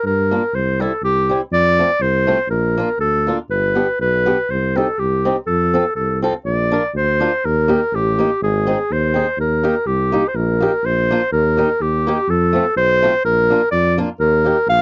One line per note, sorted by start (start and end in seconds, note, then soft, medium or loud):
0.04 0.36 G2 medium
0.04 0.57 A#4 medium
0.31 0.41 A#3 soft
0.31 0.41 D4 soft
0.31 0.42 F4 medium
0.54 0.86 C2 medium
0.54 0.83 C5 medium
0.80 0.90 G3 soft
0.80 0.90 C4 medium
0.80 0.91 E4 medium
0.80 1.04 A4 medium
1.02 1.35 C2 medium
1.02 1.39 G4 loud
1.29 1.40 G3 medium
1.29 1.40 C4 medium
1.29 1.40 E4 medium
1.51 1.83 F2 medium
1.51 2.03 D5 loud
1.79 1.89 A3 medium
1.79 1.89 C4 soft
1.79 1.89 F4 medium
2.00 2.33 C2 medium
2.00 2.50 C5 loud
2.27 2.37 A3 medium
2.27 2.37 C4 medium
2.27 2.38 F4 medium
2.49 2.82 A#1 medium
2.49 2.97 A#4 medium
2.78 2.88 A#3 medium
2.78 2.88 D4 soft
2.78 2.88 F4 medium
2.98 3.31 D2 medium
2.98 3.36 A4 medium
3.27 3.37 A#3 soft
3.27 3.38 D4 medium
3.27 3.38 F4 medium
3.49 3.82 G1 medium
3.49 3.97 B4 medium
3.75 3.86 B3 medium
3.75 3.86 D4 soft
3.75 3.87 G4 medium
4.00 4.32 B1 medium
4.00 4.53 B4 loud
4.26 4.36 B3 medium
4.26 4.37 D4 soft
4.26 4.37 G4 medium
4.50 4.82 C2 medium
4.50 4.79 C5 medium
4.76 4.86 C4 medium
4.76 4.87 D#4 soft
4.76 4.87 G4 medium
4.76 5.01 A4 medium
4.99 5.31 C2 medium
4.99 5.36 G4 loud
5.25 5.35 C4 medium
5.25 5.35 D#4 medium
5.25 5.36 G4 medium
5.47 5.79 F2 medium
5.47 5.92 A4 medium
5.74 5.84 C4 medium
5.74 5.84 F4 soft
5.74 5.84 A4 medium
5.96 6.28 C2 medium
5.96 6.20 A4 medium
6.22 6.32 C4 medium
6.22 6.33 F4 medium
6.22 6.33 A4 medium
6.45 6.77 A#1 medium
6.45 6.91 D5 medium
6.72 6.82 D4 medium
6.72 6.82 F4 soft
6.72 6.82 A#4 medium
6.94 7.26 D2 medium
6.94 7.47 C5 medium
7.20 7.31 D4 medium
7.20 7.31 F4 medium
7.20 7.31 A#4 medium
7.45 7.76 D#2 medium
7.45 7.96 A#4 medium
7.68 7.79 A#3 medium
7.68 7.80 D#4 soft
7.68 7.80 G4 medium
7.92 8.24 A1 medium
7.92 8.42 G4 loud
8.19 8.29 A#3 medium
8.19 8.29 D#4 medium
8.19 8.30 G4 medium
8.41 8.73 G#1 medium
8.41 8.94 G#4 medium
8.67 8.77 C4 medium
8.67 8.77 D#4 medium
8.67 8.78 G#4 medium
8.90 9.22 D#2 medium
8.90 9.40 C5 medium
9.14 9.25 C4 medium
9.14 9.26 D#4 medium
9.14 9.26 G#4 medium
9.38 9.69 D#2 medium
9.38 9.88 A#4 medium
9.63 9.74 A#3 medium
9.63 9.74 D#4 soft
9.63 9.74 G4 medium
9.86 10.18 C2 medium
9.86 10.30 G4 medium
10.12 10.22 A#3 medium
10.12 10.23 D#4 medium
10.12 10.23 G4 medium
10.28 10.38 C5 medium
10.34 10.66 A#1 medium
10.34 10.87 A#4 medium
10.61 10.71 A#3 medium
10.61 10.72 D#4 medium
10.61 10.72 G4 medium
10.83 11.15 A#1 medium
10.83 11.32 C5 loud
11.11 11.20 A#3 medium
11.11 11.21 D4 soft
11.11 11.21 F4 medium
11.32 11.64 D#2 medium
11.32 11.83 A#4 medium
11.57 11.68 A#3 medium
11.57 11.68 D#4 medium
11.57 11.68 G4 medium
11.81 12.12 D#2 medium
11.81 12.31 G4 medium
12.07 12.17 A#3 medium
12.07 12.17 D#4 medium
12.07 12.17 G4 medium
12.28 12.60 F2 medium
12.28 12.76 A4 medium
12.53 12.64 A3 medium
12.53 12.64 C4 soft
12.53 12.65 F4 medium
12.76 13.08 B1 medium
12.76 13.22 C5 loud
13.02 13.12 A3 medium
13.02 13.13 C4 medium
13.02 13.13 F4 medium
13.24 13.55 A#1 medium
13.24 13.69 A#4 loud
13.50 13.60 A#3 medium
13.50 13.61 D4 medium
13.50 13.61 F4 medium
13.71 14.03 F2 medium
13.71 13.96 D5 loud
13.98 14.08 A#3 medium
13.98 14.08 D4 medium
13.98 14.08 F4 medium
14.20 14.51 D#2 medium
14.20 14.65 A#4 medium
14.45 14.55 A#3 medium
14.45 14.56 D#4 medium
14.45 14.56 G4 medium
14.67 14.82 A#1 medium
14.67 14.82 F5 loud